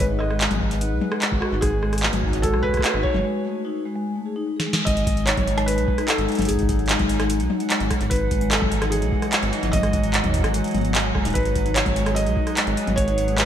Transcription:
Already playing: G#3 G#4 B4 F#5
0.00 G#1, kick, closed hi-hat
0.10 D#4
0.19 D#5, cross-stick
0.30 G#3, cross-stick
0.41 G#3, clap, closed hi-hat
0.51 G#1, closed hi-hat, high tom
0.54 high tom
0.58 G#3, kick, high tom
0.61 high tom
0.64 high tom
0.68 closed hi-hat, high tom
0.81 D#4, closed hi-hat
0.92 B1
1.01 G#3, high tom
1.12 G#3, cross-stick
1.22 clap, closed hi-hat
1.32 G#1 G#3, kick
1.41 F#4, cross-stick
1.52 G#1 D#4
1.61 G#1 G#4, kick, cross-stick, closed hi-hat
1.72 G#3 C#5
1.83 G#3 F#4, cross-stick
1.93 cross-stick, closed hi-hat
1.98 closed hi-hat
2.03 A3, clap
2.13 G#1, closed hi-hat, high tom
2.23 D#4, kick
2.30 kick, closed hi-hat
2.37 kick
2.42 G#3 A4, kick, closed hi-hat
2.53 B1 G#3, cross-stick
2.63 B4, kick
2.69 kick
2.74 A3, kick, cross-stick, closed hi-hat
2.77 kick, cross-stick
2.81 cross-stick
2.84 cross-stick, clap, closed hi-hat
2.87 cross-stick
2.91 G#1, cross-stick
2.94 D#4, cross-stick
3.03 C#5, kick
3.14 G#1 G#3, high tom
3.25 G#3
3.45 A3
3.65 D#4
3.85 G#3
3.95 G#3
4.16 A3
4.26 G#4
4.36 D#4
4.56 G#4, snare
4.66 G#3
4.73 snare
4.85 G#1 F#3 G#3 D#5, kick, closed hi-hat
4.97 closed hi-hat
5.07 G#3, kick, closed hi-hat
5.14 D#4, closed hi-hat
5.26 D#4 C#5, clap, closed hi-hat
5.37 G#1, kick, closed hi-hat, high tom
5.47 G#3, closed hi-hat
5.58 G#3, cross-stick, closed hi-hat
5.66 B4 F#5, closed hi-hat
5.78 B1 G#3, closed hi-hat
5.88 kick
5.98 D#4, cross-stick, closed hi-hat
6.07 A4, clap, closed hi-hat
6.18 G#1 G#3, closed hi-hat
6.29 G#3, closed hi-hat
6.32 closed hi-hat
6.35 closed hi-hat
6.39 G#1, closed hi-hat, high tom
6.42 closed hi-hat
6.45 G#4, closed hi-hat
6.49 G#1 G#3, kick, closed hi-hat
6.55 kick, closed hi-hat
6.62 kick
6.69 D#4, kick, closed hi-hat
6.79 closed hi-hat
6.86 clap, closed hi-hat
6.89 G#3, closed hi-hat
6.99 G#1 G#3, kick, closed hi-hat, high tom
7.09 closed hi-hat
7.20 G#3, cross-stick, closed hi-hat
7.30 closed hi-hat
7.40 B1 D#4, closed hi-hat
7.50 high tom
7.60 G#3, closed hi-hat
7.70 G#3, clap, closed hi-hat
7.80 G#1, closed hi-hat
7.91 G#3, kick, cross-stick, closed hi-hat
8.01 G#1, closed hi-hat
8.10 G#1 D#4 B4, kick, closed hi-hat
8.16 closed hi-hat
8.24 E3
8.31 G#3, kick, closed hi-hat
8.41 G#3, closed hi-hat
8.50 A4, clap, closed hi-hat
8.58 G#1 G#3 D#5, kick, high tom
8.72 closed hi-hat
8.82 D#4, cross-stick, closed hi-hat
8.90 G#4, closed hi-hat
9.02 B1 G#3, closed hi-hat
9.12 G#3, kick
9.22 cross-stick, closed hi-hat
9.32 G#3, clap, closed hi-hat
9.43 G#1, closed hi-hat
9.53 D#4, closed hi-hat
9.63 G#1, closed hi-hat, high tom
9.66 high tom
9.70 G#3 D#5, kick, closed hi-hat, high tom
9.73 G#1, high tom
9.77 high tom
9.80 G#3, cross-stick, closed hi-hat, high tom
9.93 kick, closed hi-hat
10.03 G#3, closed hi-hat
10.14 clap, closed hi-hat
10.24 G#1 D#4, kick, closed hi-hat, high tom
10.26 kick
10.29 kick
10.31 kick, closed hi-hat
10.34 kick
10.36 kick
10.39 kick
10.41 G#3, kick, cross-stick, closed hi-hat
10.54 G#3, closed hi-hat
10.64 closed hi-hat
10.68 closed hi-hat
10.71 G#1 B3, closed hi-hat
10.75 closed hi-hat, high tom
10.78 closed hi-hat, high tom
10.81 closed hi-hat, high tom
10.85 closed hi-hat, high tom
10.88 high tom
10.91 G#3, clap, closed hi-hat, high tom
11.00 closed hi-hat
11.15 F#1 G#3, kick, cross-stick
11.25 D#1 D#4, closed hi-hat
11.28 closed hi-hat
11.30 closed hi-hat
11.33 B4, closed hi-hat
11.35 G#1, kick, closed hi-hat
11.38 closed hi-hat
11.43 G#3, closed hi-hat
11.45 closed hi-hat
11.56 kick, closed hi-hat
11.65 D#4 G#4, closed hi-hat
11.74 C#5, clap, closed hi-hat
11.84 G#1 G#3 B4, kick, closed hi-hat, high tom
11.96 G#3, closed hi-hat
12.06 cross-stick, closed hi-hat
12.15 G#3 D#5, closed hi-hat
12.27 B1, closed hi-hat
12.37 D#4, kick
12.47 cross-stick, closed hi-hat
12.57 G#3, clap, closed hi-hat
12.67 G#1 G#3, closed hi-hat
12.77 closed hi-hat
12.87 G#1 G#3, closed hi-hat, high tom
12.96 G#1 C#5, kick, closed hi-hat
13.08 D#4, closed hi-hat
13.18 closed hi-hat
13.28 G#3, closed hi-hat
13.36 G#3 B4, clap, closed hi-hat

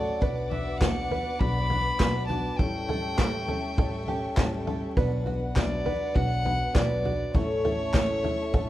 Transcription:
Already playing: A1 A2 F#3 A3 C#4 F#4 A4 C#5 D5 F#5 C#6
0.21 B1 B2 F#3 B3 D4 F#4 B4 D5 D6, kick, floor tom
0.50 D4 F#4 B4 E5, floor tom
0.78 B2 F#3 B3 D4 F#4 B4 F#5, kick, snare, clap, floor tom
0.82 B4 D5
1.10 D4 F#4 B4, floor tom
1.39 B1 F#3 B3 D4 F#4 B4 D5 B5, kick, floor tom
1.70 B3 D4 F#4 B4, floor tom
2.00 B1 B2 F#3 B3 D4 F#4 B4 D5, kick, snare, clap, floor tom
2.27 F#4 B4 A5, floor tom
2.31 D4 F#4
2.57 A1 A2 E3 G3 A3 C#4 E4 A4 E5 G5 C#6, kick, floor tom
2.61 G4 A4 C#5
2.88 G3 C#4 G4 A4, floor tom
3.18 A2 E3 G3 C#4 E4 G4 A4 C#5, kick, snare, clap, floor tom
3.48 G3 A3 C#4 G4 A4, floor tom
3.78 A1 G3 C#4 E4 G4 A4 C#5, kick, floor tom
4.08 G3 C#4 G4 A4, floor tom
4.37 A1 A2 E3 G3 A3 C#4 E4 G4 A4 C#5, kick, snare, clap, floor tom
4.67 G3 C#4 G4 A4, floor tom
4.96 B1 B2 F#3 B3 D4 F#4 B4 D5 F#5, kick, floor tom
5.26 D4 F#4 B4, floor tom
5.56 B2 F#3 B3 D4 F#4 B4 D5 E5, kick, snare, clap, floor tom
5.85 D4 F#4 B4, floor tom
6.14 B1 F#3 B3 D4 F#4 B4 C#5 F#5, kick, floor tom
6.44 B3 D4 F#4 B4, floor tom
6.73 B1 B2 F#3 B3 D4 F#4 B4 D5, kick, snare, clap, floor tom
7.04 D4 F#4 B4, floor tom
7.33 A1 A2 E3 A3 C#4 E4 A4 C#5 E5 C#6, kick, floor tom
7.64 A3 C#4 E4 A4, floor tom
7.93 A2 E3 A3 C#4 E4 A4 C#5 E5, kick, snare, clap, floor tom
8.24 A3 C#4 E4 A4, floor tom
8.52 A1 A3 C#4 E4 A4 C#5 F#5, kick, floor tom
8.57 A4

